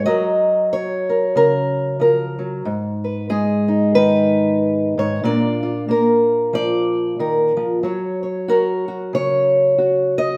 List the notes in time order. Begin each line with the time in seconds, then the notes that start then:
0.06 F#3 F#4 A#4 D#5
0.73 C#5
1.10 A#4
1.35 C#3 A#4
2.00 F3 A#4
2.39 F#3
2.65 G#2
3.04 B4
3.30 G#3 G#4
3.68 D#4
3.95 D#3 B4
4.98 G#2 C#5
5.24 A#2 A#3 D4 F4 D5
5.63 F4
5.88 A#3 A#4
6.53 F3 D5
7.19 D#3 A#4
7.57 F3
7.83 F#3 C#5
8.23 C#5
8.48 F#4 A#4
8.88 F#4
9.13 C#3 C#5
9.78 F#4
10.18 D#5